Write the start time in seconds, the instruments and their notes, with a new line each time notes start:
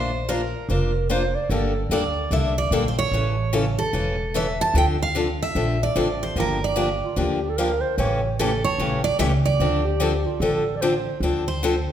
Already playing: upright bass A#1, steel-string acoustic guitar D4 F4 C5
0.29 steel-string acoustic guitar A#3 D4 F4 A#4 C5
0.69 upright bass F1, steel-string acoustic guitar A#3 D4 F4 C5, clarinet A#4
1.09 steel-string acoustic guitar A#3 D4 F4 C5, clarinet C5
1.35 clarinet D5
1.49 upright bass G1, steel-string acoustic guitar D3 G3 A#3 D4 A4, clarinet A4
1.90 upright bass D2, steel-string acoustic guitar D3 G3 A#3 D4 A4 D5
2.31 upright bass C2, steel-string acoustic guitar D3 G3 A#3 D4 A4 E5
2.58 steel-string acoustic guitar D5
2.71 upright bass A#1, steel-string acoustic guitar D3 G3 A#3 D4 A4
2.88 steel-string acoustic guitar C5
2.99 steel-string acoustic guitar C#5
3.11 upright bass A1, steel-string acoustic guitar C#3 E3 A3 C#4 A4
3.53 steel-string acoustic guitar C#3 E3 A3 C#4 A4
3.79 steel-string acoustic guitar A4
3.93 upright bass E1, steel-string acoustic guitar C#3 E3 A3 C#4 A4
4.34 steel-string acoustic guitar C#3 E3 A3 C#4 A4 E5
4.61 steel-string acoustic guitar A5
4.74 upright bass D2, steel-string acoustic guitar D3 F3 C4 D4 A4 G5
5.03 steel-string acoustic guitar F5
5.15 steel-string acoustic guitar D3 F3 C4 D4 A4
5.43 steel-string acoustic guitar E5
5.55 upright bass A#1, steel-string acoustic guitar D3 F3 C4 D4 A4
5.83 steel-string acoustic guitar D5
5.96 upright bass A1, steel-string acoustic guitar D3 F3 C4 D4 A4
6.23 steel-string acoustic guitar C5
6.36 upright bass G1, steel-string acoustic guitar D3 F3 A#3 D4 G4
6.40 steel-string acoustic guitar A#4
6.64 steel-string acoustic guitar D5
6.76 steel-string acoustic guitar D3 F3 A#3 D4 G4
7.03 clarinet F4
7.16 upright bass D2, steel-string acoustic guitar D3 F3 A#3 D4 G4, clarinet G4
7.49 clarinet A4
7.57 steel-string acoustic guitar D3 F3 A#3 D4 G4, clarinet A#4
7.81 clarinet C5
7.97 upright bass A1, steel-string acoustic guitar C#3 E3 A3 C#4 G4, clarinet C#5
8.39 steel-string acoustic guitar C#3 E3 A3 C#4 G4 A4
8.64 steel-string acoustic guitar C#5
8.78 upright bass A#1, steel-string acoustic guitar C#3 E3 A3 C#4 G4
9.04 steel-string acoustic guitar D5
9.19 upright bass C#2, steel-string acoustic guitar C#3 E3 A3 C#4 G4 E5
9.45 steel-string acoustic guitar D5
9.60 upright bass D2, steel-string acoustic guitar D3 F3 C4 D4 A4
9.84 clarinet G4
10.00 steel-string acoustic guitar D3 F3 C4 D4 A4
10.26 clarinet F4
10.40 upright bass A1, steel-string acoustic guitar D3 F3 C4 D4 A4, clarinet A4
10.76 clarinet D5
10.81 steel-string acoustic guitar D3 F3 C4 D4 A4, clarinet C5
11.20 upright bass D2, steel-string acoustic guitar D3 F3 C4 D4 A4
11.48 steel-string acoustic guitar C5
11.63 steel-string acoustic guitar D3 F3 C4 D4 A4